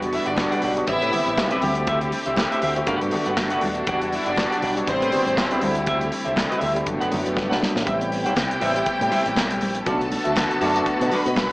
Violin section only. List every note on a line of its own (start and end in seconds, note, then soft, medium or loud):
0.13 0.24 E4 medium
0.13 0.24 E5 medium
0.27 0.61 D4 medium
0.27 0.61 D5 medium
0.88 1.59 E4 medium
0.88 1.59 E5 loud
4.13 4.24 E4 medium
4.13 4.24 E5 medium
4.27 4.60 D4 medium
4.27 4.61 D5 medium
4.88 5.59 C4 loud
4.88 5.59 C5 loud
7.86 9.82 G4 medium
7.86 9.82 G5 medium
9.86 11.09 A4 medium
9.86 11.09 A5 medium
11.11 11.52 B4 medium
11.11 11.52 B5 medium